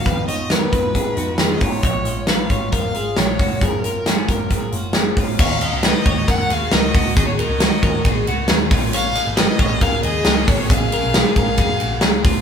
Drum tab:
CC |--------|--------|--------|x-------|
RD |--------|--------|--------|-xxxxxxx|
HH |xxxxxxxo|xxxxxxxo|xxxxxxxo|-------o|
SD |--o---o-|--o---o-|--o---o-|--o---o-|
BD |o--oo--o|o--oo--o|o--oo--o|o--oo--o|

CC |--------|--------|--------|
RD |xxxxxxxx|xxxxxxxx|xxxxxxxx|
HH |p------o|p------o|p------o|
SD |--o---o-|--o---o-|--o---o-|
BD |o--oo--o|---oo--o|o--oo--o|